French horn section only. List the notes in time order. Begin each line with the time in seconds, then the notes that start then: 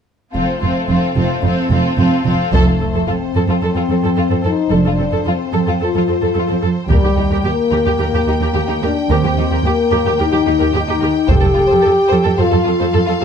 0.35 A3 C4
2.53 A3
3.08 C4
3.63 C4
4.45 D#4
4.72 D4
5.28 C4
5.83 F4
6.89 G3
7.46 A#3
8.02 A#3
8.84 D4
9.12 C4
9.65 A#3
10.21 D#4
10.75 D#4
11.30 G4
12.40 F4
13.21 G4